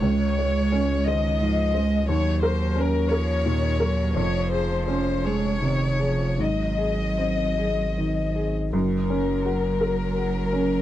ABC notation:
X:1
M:6/8
L:1/8
Q:3/8=56
K:Db
V:1 name="Violin section"
d3 e3 | d c B d3 | d c c d3 | e4- e z |
B6 |]
V:2 name="Felt piano"
D,, d D c A,, c | E,, B D B B,, B | F,, A D A C, A | A,, A C A E, A |
G,, D G B G D |]
V:3 name="Cello" clef=bass
A,3 E, F, A, | G,3 F, E, G, | F,3 A, E, F, | G,4- G, z |
G,6 |]
V:4 name="Sub bass" clef=bass
D,,6 | E,,6 | F,,,6 | A,,,6 |
G,,,6 |]